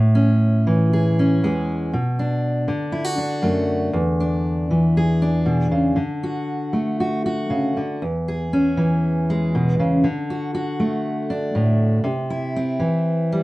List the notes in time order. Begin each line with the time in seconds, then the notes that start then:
Already playing: A2 A3
0.15 C#4
0.67 E3
0.93 G#4
1.19 C#4
1.43 E2 G#3
1.93 B2
2.19 D4
2.68 D3
2.92 E4
3.04 F#4
3.18 D4
3.42 F#2 A3
3.93 E2
4.20 D4
4.71 E3
4.97 G#4
5.22 D4
5.46 B2
5.71 C#3
5.96 D3
6.23 F#4
6.73 A3
7.00 F#4
7.26 F#4
7.50 C#3
7.77 D3
8.02 E2
8.28 G#4
8.53 C#4
8.77 E3
9.30 G#3
9.55 B2
9.79 C#3
10.04 D3
10.30 F#4
10.54 F#4
10.80 A3
11.30 D4
11.55 A2
12.04 C3
12.30 E4
12.56 C4
12.80 E3
13.32 G3